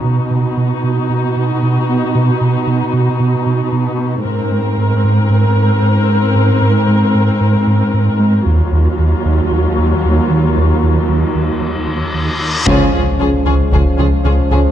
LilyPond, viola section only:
\new Staff \with { instrumentName = "Viola section" } { \time 4/4 \key ees \minor \tempo 4 = 114 <dis' fis'>1~ | <dis' fis'>1 | <c' bes'>1~ | <c' bes'>1 |
<ges f'>1~ | <ges f'>2.~ <ges f'>8 r8 | des'8 des'8 des'8 des'8 des'8 des'8 des'8 des'8 | }